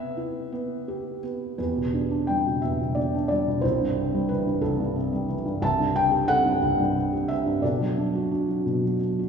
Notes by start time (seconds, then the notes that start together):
Already playing: C3 B3 B4 E5
0.17 E4
0.52 B3
0.88 G4
1.23 B3
1.58 E2 G4 B4
1.76 B2
1.94 D3
2.10 D4
2.27 G3 G5
2.46 B2
2.62 E2 E5
2.80 B2
2.95 D3 D5
3.14 D4
3.28 G3 D5
3.48 B2
3.61 C2 E4 C5
3.81 G2
3.98 C3
4.14 G3
4.29 E3 B4
4.47 G2
4.61 C2 A4
4.80 G2
4.96 C3
5.13 G3
5.29 E3
5.45 G2
5.61 C2 E5 A5
5.79 G2
5.95 C3 G5
6.12 G4
6.28 C4 A4 F#5
6.45 G2
6.62 C2
6.80 G2
6.96 C3
7.13 G4
7.28 C4 E5
7.45 G2
7.62 B2 A4 D5
7.80 F#3
7.98 D4
8.15 F#4
8.31 D4
8.48 F#3
8.66 B2
8.84 F#3
9.01 D4
9.19 F#4